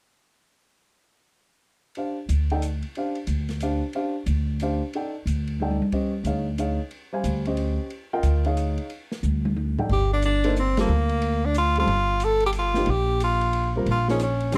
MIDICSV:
0, 0, Header, 1, 5, 480
1, 0, Start_track
1, 0, Tempo, 330579
1, 2844, Time_signature, 3, 2, 24, 8
1, 21166, End_track
2, 0, Start_track
2, 0, Title_t, "Grand piano"
2, 0, Program_c, 0, 0
2, 2859, Note_on_c, 0, 62, 39
2, 2861, Note_on_c, 0, 67, 38
2, 2864, Note_on_c, 0, 72, 37
2, 2879, Note_on_c, 0, 77, 43
2, 3128, Note_off_c, 0, 62, 0
2, 3128, Note_off_c, 0, 67, 0
2, 3130, Note_off_c, 0, 72, 0
2, 3138, Note_off_c, 0, 77, 0
2, 3649, Note_on_c, 0, 63, 57
2, 3653, Note_on_c, 0, 79, 62
2, 3657, Note_on_c, 0, 69, 49
2, 3663, Note_on_c, 0, 74, 48
2, 3796, Note_off_c, 0, 63, 0
2, 3798, Note_off_c, 0, 79, 0
2, 3800, Note_off_c, 0, 69, 0
2, 3803, Note_off_c, 0, 74, 0
2, 4311, Note_on_c, 0, 62, 39
2, 4317, Note_on_c, 0, 67, 39
2, 4322, Note_on_c, 0, 72, 40
2, 4331, Note_on_c, 0, 77, 50
2, 4573, Note_off_c, 0, 62, 0
2, 4576, Note_off_c, 0, 67, 0
2, 4579, Note_off_c, 0, 72, 0
2, 4583, Note_off_c, 0, 77, 0
2, 5261, Note_on_c, 0, 62, 49
2, 5264, Note_on_c, 0, 67, 42
2, 5266, Note_on_c, 0, 77, 52
2, 5273, Note_on_c, 0, 72, 39
2, 5528, Note_off_c, 0, 62, 0
2, 5530, Note_off_c, 0, 67, 0
2, 5531, Note_off_c, 0, 77, 0
2, 5534, Note_off_c, 0, 72, 0
2, 5737, Note_on_c, 0, 72, 43
2, 5738, Note_on_c, 0, 67, 43
2, 5739, Note_on_c, 0, 62, 47
2, 5744, Note_on_c, 0, 77, 55
2, 6006, Note_off_c, 0, 72, 0
2, 6007, Note_off_c, 0, 62, 0
2, 6007, Note_off_c, 0, 67, 0
2, 6010, Note_off_c, 0, 77, 0
2, 6706, Note_on_c, 0, 62, 47
2, 6713, Note_on_c, 0, 67, 48
2, 6717, Note_on_c, 0, 72, 48
2, 6719, Note_on_c, 0, 77, 52
2, 6971, Note_off_c, 0, 62, 0
2, 6974, Note_off_c, 0, 67, 0
2, 6977, Note_off_c, 0, 72, 0
2, 6977, Note_off_c, 0, 77, 0
2, 7188, Note_on_c, 0, 63, 43
2, 7193, Note_on_c, 0, 69, 38
2, 7199, Note_on_c, 0, 74, 41
2, 7205, Note_on_c, 0, 79, 46
2, 7452, Note_off_c, 0, 63, 0
2, 7455, Note_off_c, 0, 69, 0
2, 7457, Note_off_c, 0, 74, 0
2, 7461, Note_off_c, 0, 79, 0
2, 8153, Note_on_c, 0, 69, 45
2, 8154, Note_on_c, 0, 63, 49
2, 8157, Note_on_c, 0, 74, 47
2, 8166, Note_on_c, 0, 79, 55
2, 8415, Note_off_c, 0, 63, 0
2, 8415, Note_off_c, 0, 69, 0
2, 8417, Note_off_c, 0, 74, 0
2, 8421, Note_off_c, 0, 79, 0
2, 8610, Note_on_c, 0, 67, 44
2, 8617, Note_on_c, 0, 72, 38
2, 8618, Note_on_c, 0, 61, 44
2, 8618, Note_on_c, 0, 75, 51
2, 8883, Note_off_c, 0, 67, 0
2, 8887, Note_off_c, 0, 61, 0
2, 8887, Note_off_c, 0, 72, 0
2, 8887, Note_off_c, 0, 75, 0
2, 9091, Note_on_c, 0, 63, 42
2, 9091, Note_on_c, 0, 73, 38
2, 9095, Note_on_c, 0, 68, 39
2, 9101, Note_on_c, 0, 77, 51
2, 9363, Note_off_c, 0, 63, 0
2, 9364, Note_off_c, 0, 73, 0
2, 9366, Note_off_c, 0, 68, 0
2, 9369, Note_off_c, 0, 77, 0
2, 9561, Note_on_c, 0, 63, 45
2, 9572, Note_on_c, 0, 73, 41
2, 9573, Note_on_c, 0, 68, 39
2, 9582, Note_on_c, 0, 77, 51
2, 9839, Note_off_c, 0, 63, 0
2, 9844, Note_off_c, 0, 73, 0
2, 9845, Note_off_c, 0, 68, 0
2, 9849, Note_off_c, 0, 77, 0
2, 10346, Note_on_c, 0, 55, 56
2, 10354, Note_on_c, 0, 72, 54
2, 10358, Note_on_c, 0, 77, 48
2, 10364, Note_on_c, 0, 80, 62
2, 10799, Note_off_c, 0, 55, 0
2, 10803, Note_off_c, 0, 72, 0
2, 10805, Note_off_c, 0, 77, 0
2, 10808, Note_off_c, 0, 80, 0
2, 10838, Note_on_c, 0, 61, 52
2, 10846, Note_on_c, 0, 72, 49
2, 10848, Note_on_c, 0, 75, 55
2, 10852, Note_on_c, 0, 67, 45
2, 11454, Note_off_c, 0, 61, 0
2, 11459, Note_off_c, 0, 72, 0
2, 11460, Note_off_c, 0, 75, 0
2, 11461, Note_off_c, 0, 67, 0
2, 11808, Note_on_c, 0, 65, 66
2, 11809, Note_on_c, 0, 70, 56
2, 11809, Note_on_c, 0, 79, 71
2, 11815, Note_on_c, 0, 75, 55
2, 12250, Note_off_c, 0, 65, 0
2, 12251, Note_off_c, 0, 70, 0
2, 12251, Note_off_c, 0, 79, 0
2, 12254, Note_off_c, 0, 75, 0
2, 12280, Note_on_c, 0, 63, 53
2, 12284, Note_on_c, 0, 68, 51
2, 12287, Note_on_c, 0, 73, 51
2, 12288, Note_on_c, 0, 77, 63
2, 12896, Note_off_c, 0, 63, 0
2, 12898, Note_off_c, 0, 68, 0
2, 12899, Note_off_c, 0, 73, 0
2, 12900, Note_off_c, 0, 77, 0
2, 14211, Note_on_c, 0, 63, 47
2, 14213, Note_on_c, 0, 69, 43
2, 14220, Note_on_c, 0, 74, 44
2, 14221, Note_on_c, 0, 79, 55
2, 14359, Note_off_c, 0, 63, 0
2, 14360, Note_off_c, 0, 69, 0
2, 14363, Note_off_c, 0, 74, 0
2, 14364, Note_off_c, 0, 79, 0
2, 15164, Note_on_c, 0, 69, 55
2, 15166, Note_on_c, 0, 58, 61
2, 15167, Note_on_c, 0, 63, 54
2, 15168, Note_on_c, 0, 72, 65
2, 15315, Note_off_c, 0, 69, 0
2, 15316, Note_off_c, 0, 58, 0
2, 15317, Note_off_c, 0, 63, 0
2, 15317, Note_off_c, 0, 72, 0
2, 15641, Note_on_c, 0, 60, 56
2, 15642, Note_on_c, 0, 55, 62
2, 15653, Note_on_c, 0, 65, 56
2, 15653, Note_on_c, 0, 69, 67
2, 15793, Note_off_c, 0, 60, 0
2, 15794, Note_off_c, 0, 55, 0
2, 15799, Note_off_c, 0, 65, 0
2, 15799, Note_off_c, 0, 69, 0
2, 17095, Note_on_c, 0, 60, 50
2, 17096, Note_on_c, 0, 55, 52
2, 17101, Note_on_c, 0, 65, 46
2, 17106, Note_on_c, 0, 69, 63
2, 17239, Note_off_c, 0, 60, 0
2, 17240, Note_off_c, 0, 55, 0
2, 17243, Note_off_c, 0, 65, 0
2, 17245, Note_off_c, 0, 69, 0
2, 18524, Note_on_c, 0, 53, 61
2, 18534, Note_on_c, 0, 58, 53
2, 18542, Note_on_c, 0, 67, 67
2, 18543, Note_on_c, 0, 63, 54
2, 18673, Note_off_c, 0, 53, 0
2, 18678, Note_off_c, 0, 58, 0
2, 18682, Note_off_c, 0, 63, 0
2, 18682, Note_off_c, 0, 67, 0
2, 19977, Note_on_c, 0, 55, 57
2, 19983, Note_on_c, 0, 60, 51
2, 19992, Note_on_c, 0, 65, 50
2, 19995, Note_on_c, 0, 70, 61
2, 20119, Note_off_c, 0, 55, 0
2, 20121, Note_off_c, 0, 60, 0
2, 20126, Note_off_c, 0, 65, 0
2, 20127, Note_off_c, 0, 70, 0
2, 20451, Note_on_c, 0, 53, 62
2, 20459, Note_on_c, 0, 58, 54
2, 20469, Note_on_c, 0, 63, 54
2, 20472, Note_on_c, 0, 68, 65
2, 20595, Note_off_c, 0, 53, 0
2, 20599, Note_off_c, 0, 58, 0
2, 20604, Note_off_c, 0, 63, 0
2, 20605, Note_off_c, 0, 68, 0
2, 21084, Note_on_c, 0, 51, 54
2, 21091, Note_on_c, 0, 56, 56
2, 21098, Note_on_c, 0, 61, 57
2, 21099, Note_on_c, 0, 67, 68
2, 21166, Note_off_c, 0, 51, 0
2, 21166, Note_off_c, 0, 56, 0
2, 21166, Note_off_c, 0, 61, 0
2, 21166, Note_off_c, 0, 67, 0
2, 21166, End_track
3, 0, Start_track
3, 0, Title_t, "Tenor saxophone"
3, 0, Program_c, 1, 66
3, 14412, Note_on_c, 1, 67, 83
3, 14676, Note_off_c, 1, 67, 0
3, 14713, Note_on_c, 1, 62, 78
3, 14856, Note_off_c, 1, 62, 0
3, 14886, Note_on_c, 1, 62, 79
3, 15314, Note_off_c, 1, 62, 0
3, 15382, Note_on_c, 1, 60, 84
3, 15641, Note_off_c, 1, 60, 0
3, 15689, Note_on_c, 1, 58, 79
3, 16634, Note_on_c, 1, 62, 82
3, 16655, Note_off_c, 1, 58, 0
3, 16786, Note_off_c, 1, 62, 0
3, 16816, Note_on_c, 1, 65, 88
3, 17077, Note_off_c, 1, 65, 0
3, 17132, Note_on_c, 1, 65, 90
3, 17777, Note_on_c, 1, 69, 96
3, 17799, Note_off_c, 1, 65, 0
3, 18057, Note_off_c, 1, 69, 0
3, 18099, Note_on_c, 1, 67, 85
3, 18162, Note_off_c, 1, 67, 0
3, 18280, Note_on_c, 1, 65, 85
3, 18743, Note_on_c, 1, 67, 96
3, 18765, Note_off_c, 1, 65, 0
3, 19193, Note_off_c, 1, 67, 0
3, 19223, Note_on_c, 1, 65, 83
3, 19925, Note_off_c, 1, 65, 0
3, 20198, Note_on_c, 1, 65, 82
3, 20446, Note_off_c, 1, 65, 0
3, 20480, Note_on_c, 1, 61, 75
3, 20616, Note_off_c, 1, 61, 0
3, 20656, Note_on_c, 1, 61, 74
3, 21075, Note_off_c, 1, 61, 0
3, 21166, End_track
4, 0, Start_track
4, 0, Title_t, "Upright bass"
4, 0, Program_c, 2, 32
4, 3321, Note_on_c, 2, 38, 66
4, 4086, Note_off_c, 2, 38, 0
4, 4751, Note_on_c, 2, 38, 64
4, 5520, Note_off_c, 2, 38, 0
4, 6190, Note_on_c, 2, 38, 68
4, 6961, Note_off_c, 2, 38, 0
4, 7631, Note_on_c, 2, 38, 67
4, 8401, Note_off_c, 2, 38, 0
4, 9057, Note_on_c, 2, 38, 64
4, 9834, Note_off_c, 2, 38, 0
4, 10510, Note_on_c, 2, 38, 66
4, 11281, Note_off_c, 2, 38, 0
4, 11949, Note_on_c, 2, 38, 69
4, 12721, Note_off_c, 2, 38, 0
4, 13400, Note_on_c, 2, 38, 68
4, 14167, Note_off_c, 2, 38, 0
4, 14366, Note_on_c, 2, 31, 74
4, 15748, Note_off_c, 2, 31, 0
4, 15795, Note_on_c, 2, 38, 76
4, 17181, Note_off_c, 2, 38, 0
4, 17233, Note_on_c, 2, 31, 77
4, 18619, Note_off_c, 2, 31, 0
4, 18686, Note_on_c, 2, 34, 75
4, 20064, Note_off_c, 2, 34, 0
4, 20126, Note_on_c, 2, 34, 76
4, 21166, Note_off_c, 2, 34, 0
4, 21166, End_track
5, 0, Start_track
5, 0, Title_t, "Drums"
5, 2831, Note_on_c, 9, 51, 36
5, 2976, Note_off_c, 9, 51, 0
5, 3324, Note_on_c, 9, 44, 45
5, 3324, Note_on_c, 9, 51, 52
5, 3469, Note_off_c, 9, 44, 0
5, 3469, Note_off_c, 9, 51, 0
5, 3629, Note_on_c, 9, 51, 35
5, 3774, Note_off_c, 9, 51, 0
5, 3804, Note_on_c, 9, 44, 54
5, 3804, Note_on_c, 9, 51, 44
5, 3949, Note_off_c, 9, 44, 0
5, 3949, Note_off_c, 9, 51, 0
5, 4101, Note_on_c, 9, 51, 31
5, 4246, Note_off_c, 9, 51, 0
5, 4286, Note_on_c, 9, 51, 35
5, 4431, Note_off_c, 9, 51, 0
5, 4577, Note_on_c, 9, 51, 34
5, 4722, Note_off_c, 9, 51, 0
5, 4747, Note_on_c, 9, 44, 42
5, 4747, Note_on_c, 9, 51, 53
5, 4892, Note_off_c, 9, 44, 0
5, 4892, Note_off_c, 9, 51, 0
5, 5061, Note_on_c, 9, 51, 34
5, 5069, Note_on_c, 9, 38, 26
5, 5207, Note_off_c, 9, 51, 0
5, 5214, Note_off_c, 9, 38, 0
5, 5232, Note_on_c, 9, 44, 47
5, 5232, Note_on_c, 9, 51, 50
5, 5377, Note_off_c, 9, 44, 0
5, 5377, Note_off_c, 9, 51, 0
5, 5708, Note_on_c, 9, 51, 41
5, 5853, Note_off_c, 9, 51, 0
5, 6190, Note_on_c, 9, 44, 47
5, 6190, Note_on_c, 9, 51, 49
5, 6335, Note_off_c, 9, 44, 0
5, 6335, Note_off_c, 9, 51, 0
5, 6673, Note_on_c, 9, 44, 40
5, 6673, Note_on_c, 9, 51, 47
5, 6818, Note_off_c, 9, 44, 0
5, 6818, Note_off_c, 9, 51, 0
5, 7164, Note_on_c, 9, 51, 42
5, 7309, Note_off_c, 9, 51, 0
5, 7652, Note_on_c, 9, 44, 42
5, 7652, Note_on_c, 9, 51, 50
5, 7797, Note_off_c, 9, 44, 0
5, 7797, Note_off_c, 9, 51, 0
5, 7948, Note_on_c, 9, 51, 35
5, 8093, Note_off_c, 9, 51, 0
5, 8129, Note_on_c, 9, 48, 32
5, 8274, Note_off_c, 9, 48, 0
5, 8290, Note_on_c, 9, 48, 38
5, 8435, Note_off_c, 9, 48, 0
5, 8451, Note_on_c, 9, 48, 56
5, 8596, Note_off_c, 9, 48, 0
5, 8599, Note_on_c, 9, 51, 50
5, 8604, Note_on_c, 9, 36, 51
5, 8744, Note_off_c, 9, 51, 0
5, 8749, Note_off_c, 9, 36, 0
5, 9069, Note_on_c, 9, 44, 39
5, 9069, Note_on_c, 9, 51, 50
5, 9214, Note_off_c, 9, 44, 0
5, 9214, Note_off_c, 9, 51, 0
5, 9555, Note_on_c, 9, 44, 46
5, 9555, Note_on_c, 9, 51, 49
5, 9700, Note_off_c, 9, 44, 0
5, 9700, Note_off_c, 9, 51, 0
5, 10029, Note_on_c, 9, 51, 40
5, 10174, Note_off_c, 9, 51, 0
5, 10510, Note_on_c, 9, 44, 51
5, 10510, Note_on_c, 9, 51, 52
5, 10655, Note_off_c, 9, 44, 0
5, 10655, Note_off_c, 9, 51, 0
5, 10822, Note_on_c, 9, 51, 36
5, 10968, Note_off_c, 9, 51, 0
5, 10990, Note_on_c, 9, 51, 46
5, 11135, Note_off_c, 9, 51, 0
5, 11475, Note_on_c, 9, 51, 40
5, 11620, Note_off_c, 9, 51, 0
5, 11949, Note_on_c, 9, 44, 50
5, 11949, Note_on_c, 9, 51, 54
5, 12094, Note_off_c, 9, 44, 0
5, 12094, Note_off_c, 9, 51, 0
5, 12262, Note_on_c, 9, 51, 37
5, 12407, Note_off_c, 9, 51, 0
5, 12441, Note_on_c, 9, 44, 41
5, 12441, Note_on_c, 9, 51, 51
5, 12586, Note_off_c, 9, 44, 0
5, 12586, Note_off_c, 9, 51, 0
5, 12742, Note_on_c, 9, 51, 35
5, 12887, Note_off_c, 9, 51, 0
5, 12918, Note_on_c, 9, 51, 42
5, 13063, Note_off_c, 9, 51, 0
5, 13236, Note_on_c, 9, 38, 41
5, 13381, Note_off_c, 9, 38, 0
5, 13402, Note_on_c, 9, 44, 44
5, 13409, Note_on_c, 9, 48, 33
5, 13547, Note_off_c, 9, 44, 0
5, 13554, Note_off_c, 9, 48, 0
5, 13724, Note_on_c, 9, 48, 53
5, 13870, Note_off_c, 9, 48, 0
5, 13888, Note_on_c, 9, 48, 46
5, 14033, Note_off_c, 9, 48, 0
5, 14209, Note_on_c, 9, 43, 65
5, 14354, Note_off_c, 9, 43, 0
5, 14364, Note_on_c, 9, 49, 56
5, 14369, Note_on_c, 9, 36, 60
5, 14510, Note_off_c, 9, 49, 0
5, 14514, Note_off_c, 9, 36, 0
5, 14843, Note_on_c, 9, 44, 56
5, 14843, Note_on_c, 9, 51, 59
5, 14989, Note_off_c, 9, 44, 0
5, 14989, Note_off_c, 9, 51, 0
5, 15156, Note_on_c, 9, 51, 57
5, 15301, Note_off_c, 9, 51, 0
5, 15335, Note_on_c, 9, 44, 59
5, 15480, Note_off_c, 9, 44, 0
5, 15639, Note_on_c, 9, 51, 58
5, 15646, Note_on_c, 9, 38, 73
5, 15784, Note_off_c, 9, 51, 0
5, 15791, Note_off_c, 9, 38, 0
5, 16107, Note_on_c, 9, 51, 40
5, 16253, Note_off_c, 9, 51, 0
5, 16286, Note_on_c, 9, 51, 52
5, 16431, Note_off_c, 9, 51, 0
5, 16761, Note_on_c, 9, 44, 45
5, 16761, Note_on_c, 9, 51, 55
5, 16906, Note_off_c, 9, 44, 0
5, 16906, Note_off_c, 9, 51, 0
5, 17067, Note_on_c, 9, 51, 40
5, 17212, Note_off_c, 9, 51, 0
5, 17242, Note_on_c, 9, 51, 45
5, 17387, Note_off_c, 9, 51, 0
5, 17712, Note_on_c, 9, 44, 50
5, 17712, Note_on_c, 9, 51, 60
5, 17858, Note_off_c, 9, 44, 0
5, 17858, Note_off_c, 9, 51, 0
5, 18010, Note_on_c, 9, 51, 40
5, 18155, Note_off_c, 9, 51, 0
5, 18187, Note_on_c, 9, 44, 51
5, 18187, Note_on_c, 9, 51, 56
5, 18332, Note_off_c, 9, 44, 0
5, 18332, Note_off_c, 9, 51, 0
5, 18502, Note_on_c, 9, 38, 44
5, 18647, Note_off_c, 9, 38, 0
5, 18668, Note_on_c, 9, 51, 48
5, 18813, Note_off_c, 9, 51, 0
5, 19169, Note_on_c, 9, 44, 51
5, 19169, Note_on_c, 9, 51, 62
5, 19314, Note_off_c, 9, 44, 0
5, 19314, Note_off_c, 9, 51, 0
5, 19472, Note_on_c, 9, 51, 41
5, 19618, Note_off_c, 9, 51, 0
5, 19644, Note_on_c, 9, 51, 51
5, 19790, Note_off_c, 9, 51, 0
5, 20129, Note_on_c, 9, 51, 53
5, 20274, Note_off_c, 9, 51, 0
5, 20450, Note_on_c, 9, 38, 43
5, 20595, Note_off_c, 9, 38, 0
5, 20611, Note_on_c, 9, 44, 51
5, 20611, Note_on_c, 9, 51, 59
5, 20756, Note_off_c, 9, 44, 0
5, 20756, Note_off_c, 9, 51, 0
5, 20914, Note_on_c, 9, 51, 42
5, 21059, Note_off_c, 9, 51, 0
5, 21086, Note_on_c, 9, 44, 53
5, 21086, Note_on_c, 9, 51, 58
5, 21166, Note_off_c, 9, 44, 0
5, 21166, Note_off_c, 9, 51, 0
5, 21166, End_track
0, 0, End_of_file